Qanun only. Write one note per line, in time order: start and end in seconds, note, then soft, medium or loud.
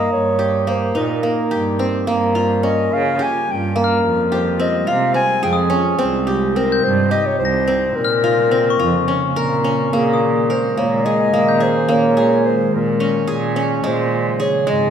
0.00 0.67 A#3 medium
0.00 0.14 D#4 medium
0.00 0.40 A#4 medium
0.39 1.51 G4 medium
0.67 1.23 A#3 medium
0.95 2.39 D#4 medium
1.23 2.07 A#3 medium
1.51 2.77 G4 medium
1.79 2.69 C4 medium
2.07 3.75 A#3 medium
2.35 3.70 F4 medium
2.63 4.18 C#4 medium
3.19 4.31 G4 medium
3.76 5.47 A#3 medium
4.32 5.49 G4 medium
4.60 5.14 C4 medium
4.87 6.22 F4 medium
5.14 5.76 C4 medium
5.43 6.33 G#4 medium
5.70 6.05 C#4 medium
5.99 6.56 C4 medium
6.27 7.11 G4 medium
6.56 7.67 C4 medium
7.11 8.37 G4 medium
7.68 8.51 C4 medium
8.24 8.79 F4 medium
8.51 9.14 C4 medium
8.79 10.14 F4 medium
9.08 9.64 C#4 medium
9.36 10.49 A#4 medium
9.64 11.19 C#4 medium
9.93 10.77 A#3 medium
10.50 11.63 A#4 medium
10.77 11.33 A#3 medium
11.06 11.60 G#4 medium
11.34 11.88 A#3 medium
11.60 12.16 G#4 medium
11.89 13.60 A#3 medium
12.17 13.27 G#4 medium
13.00 13.56 C#4 medium
13.28 14.39 G#4 medium
13.56 14.90 C#4 medium
13.84 14.66 G#3 medium
14.40 14.90 G#4 medium
14.67 14.90 G#3 medium